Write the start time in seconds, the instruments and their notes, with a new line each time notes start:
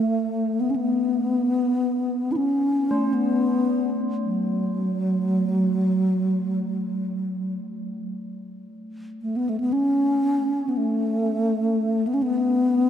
Already playing: bass flute A3
0.61 bass flute B3
0.70 bass flute C#4
0.76 bass flute B3
2.32 bass flute E4
2.36 bass flute C#4
2.91 singing bowl A3
3.14 bass flute B3
4.25 bass flute F#3
9.22 bass flute A3
9.36 bass flute B3
9.49 bass flute A3
9.60 bass flute B3
9.72 bass flute C#4
10.69 bass flute B3
10.77 bass flute A3
12.07 bass flute B3
12.14 bass flute C#4
12.22 bass flute B3